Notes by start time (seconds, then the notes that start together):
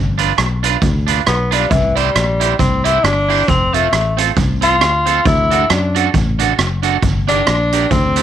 Already playing: G1
0.18 D4 F4 B4, closed hi-hat
0.37 B1, muted clean electric guitar stroke, cross-stick, closed hi-hat
0.63 D4 F4 B4, closed hi-hat
0.82 D2, kick, closed hi-hat
1.07 D4 F4 B4, closed hi-hat
1.26 B1 B3, cross-stick, closed hi-hat
1.51 G3 D4 F4 B4, closed hi-hat
1.71 C2 E3, kick, closed hi-hat
1.96 G3 E4 G4 C5, closed hi-hat
2.15 A#1, muted clean electric guitar stroke, cross-stick, closed hi-hat
2.40 E4 G4 C5, closed hi-hat
2.59 C2 C4, kick, closed hi-hat
2.84 E4 G4 C5, closed hi-hat
3.04 G1 D4, cross-stick, closed hi-hat
3.29 E4 G4 C5, open hi-hat
3.48 F1 C4, kick, closed hi-hat
3.73 A3 C4 F4 A4, closed hi-hat
3.92 A1, muted clean electric guitar stroke, cross-stick, closed hi-hat
4.17 C4 F4 A4, closed hi-hat
4.37 C2, kick, closed hi-hat
4.61 C4 F4 A4, closed hi-hat
4.81 D2, cross-stick, closed hi-hat
5.06 C4 F4 A4, closed hi-hat
5.25 D2 E4, kick, closed hi-hat
5.51 D4 F#4 A4, closed hi-hat
5.70 F#2 D4, muted clean electric guitar stroke, cross-stick, closed hi-hat
5.95 D4 F#4 A4, closed hi-hat
6.14 A1, kick, closed hi-hat
6.39 D4 F#4 A4, closed hi-hat
6.58 F#1, cross-stick, closed hi-hat
6.83 D4 F#4 A4, closed hi-hat
7.02 G1, kick, closed hi-hat
7.28 D4 G4 A#4, closed hi-hat
7.46 A#1, muted clean electric guitar stroke, cross-stick, closed hi-hat
7.72 D4 G4 A#4, closed hi-hat
7.91 D2 C4, kick, closed hi-hat
8.16 D4 G4 A#4, closed hi-hat